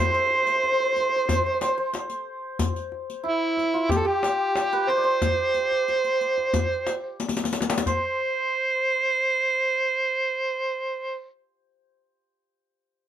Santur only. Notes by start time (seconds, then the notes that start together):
Already playing: E4 G4 A4
0.04 C5
0.12 C5
0.19 C5
0.26 C5
0.34 C5
0.42 C5
0.48 C5
0.56 C5
0.64 C5
0.72 C5
0.80 C5
0.85 C5
0.93 C5
1.00 C5
1.09 C5
1.16 C5
1.25 C5
1.33 C5
1.41 C5
1.46 C5
1.54 C5
1.62 C5
1.68 C5
1.78 C5
3.23 E4
3.74 F4
3.90 G4
4.05 G4
4.73 B4
4.90 C5
4.97 D5
5.04 C5
7.86 C5